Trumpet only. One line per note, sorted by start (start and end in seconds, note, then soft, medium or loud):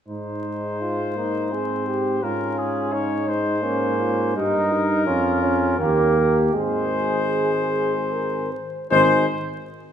0.08 2.24 C5 medium
2.23 2.59 A#4 medium
2.58 2.94 G#4 soft
2.93 3.29 C#5 medium
3.28 4.36 C5 soft
4.37 5.77 A#4 medium
5.79 6.37 A#4 medium
6.54 8.52 C5 medium
8.91 9.25 C5 medium